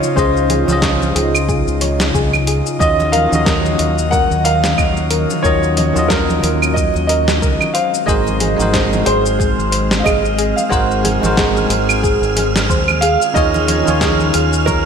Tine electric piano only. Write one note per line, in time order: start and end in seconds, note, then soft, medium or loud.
0.00 0.12 C#3 medium
0.00 0.13 C#4 medium
0.00 0.14 F4 medium
0.00 0.14 C5 medium
0.00 0.15 D#5 medium
0.16 0.64 C#3 medium
0.16 0.64 C#4 medium
0.16 0.64 F4 medium
0.16 0.65 C5 medium
0.16 0.65 D#5 loud
0.66 2.76 C#3 medium
0.66 2.77 C#4 medium
0.66 2.78 F4 medium
0.71 2.78 C5 medium
0.71 2.79 D#5 medium
2.79 3.27 D#3 medium
2.79 3.27 C#4 medium
2.79 3.28 F4 medium
2.79 3.28 F#4 medium
2.79 3.29 D#5 loud
3.29 5.39 D#3 medium
3.29 5.40 C#4 medium
3.29 5.41 D#4 medium
3.34 5.42 F#4 medium
3.34 5.43 D#5 medium
5.43 5.91 D#3 medium
5.43 5.91 C#4 medium
5.43 5.92 F4 medium
5.43 5.92 F#4 medium
5.43 5.92 D#5 loud
5.93 7.72 D#3 medium
5.93 7.73 C#4 medium
5.93 7.73 F4 medium
5.97 7.74 F#4 medium
5.97 7.75 D#5 medium
8.06 8.54 G#3 medium
8.06 8.55 D#4 medium
8.06 8.55 F#4 medium
8.06 8.55 A#4 medium
8.06 8.56 C5 loud
8.56 10.67 G#3 medium
8.56 10.67 D#4 medium
8.56 10.68 F#4 medium
8.61 10.69 A#4 medium
8.61 10.70 C5 medium
10.69 11.18 G#3 loud
10.69 11.18 D#4 medium
10.69 11.19 F#4 medium
10.69 11.19 A#4 medium
10.69 11.19 C5 loud
11.20 12.99 G#3 medium
11.20 13.00 D#4 medium
11.20 13.01 F#4 medium
11.25 13.02 A#4 medium
11.25 13.02 C5 medium
13.34 13.82 D#3 loud
13.34 13.82 D#4 medium
13.34 13.83 F4 medium
13.34 13.83 G#4 medium
13.34 13.83 C#5 loud
13.84 14.85 D#3 medium
13.84 14.85 D#4 medium
13.84 14.85 F4 medium
13.88 14.85 G#4 medium
13.88 14.85 C#5 medium